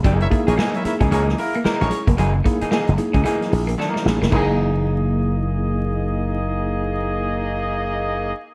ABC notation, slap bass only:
X:1
M:4/4
L:1/16
Q:"Swing 16ths" 1/4=112
K:F#mix
V:1 name="Slap bass" clef=bass
F,,,2 z A,,, z3 C,, C,,2 z3 A,,, z ^E,,, | F,,,2 z3 F,,, z C,, z2 A,,,2 z2 =A,,, ^E,,, | F,,,16- | F,,,16 |]